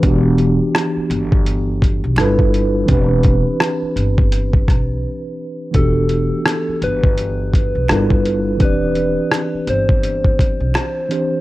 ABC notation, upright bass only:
X:1
M:4/4
L:1/16
Q:"Swing 16ths" 1/4=84
K:Em
V:1 name="Upright bass" clef=bass
E,,,3 z3 G,,,4- G,,, B,,, G,,,4 | E,,,3 z3 G,,,4 B,,,2 z4 | E,,,3 z3 G,,,4- G,,, B,,, G,,,4 | E,,,3 z3 G,,,4- G,,, B,,, z4 |]